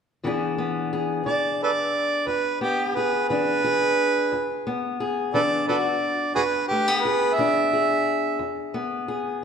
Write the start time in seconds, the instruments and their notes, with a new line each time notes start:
0.23 steel-string acoustic guitar E2 E3 B3 D4 G#4
0.58 steel-string acoustic guitar B3
0.93 steel-string acoustic guitar G#4
1.26 steel-string acoustic guitar E3 D4, harmonica D5
1.63 harmonica A4 B4 D5
2.27 steel-string acoustic guitar E2, harmonica B4
2.61 steel-string acoustic guitar B3, harmonica G4
2.95 steel-string acoustic guitar G#4, harmonica B4
3.29 steel-string acoustic guitar E3 D4, harmonica B4
3.64 steel-string acoustic guitar G#4
4.32 steel-string acoustic guitar E2
4.67 steel-string acoustic guitar B3
5.00 steel-string acoustic guitar G#4
5.34 steel-string acoustic guitar E3 D4, harmonica A4 B4 D5
5.68 steel-string acoustic guitar F#4, harmonica A4 B4 D5
6.35 steel-string acoustic guitar E2, harmonica F#4 G#4 B4
6.68 steel-string acoustic guitar A3, harmonica G4
6.88 steel-string acoustic guitar B3
7.01 harmonica B4
7.05 steel-string acoustic guitar G#4
7.34 harmonica E5
7.38 steel-string acoustic guitar E3 D4
7.73 steel-string acoustic guitar G#4
8.39 steel-string acoustic guitar E2
8.74 steel-string acoustic guitar B3
9.08 steel-string acoustic guitar G#4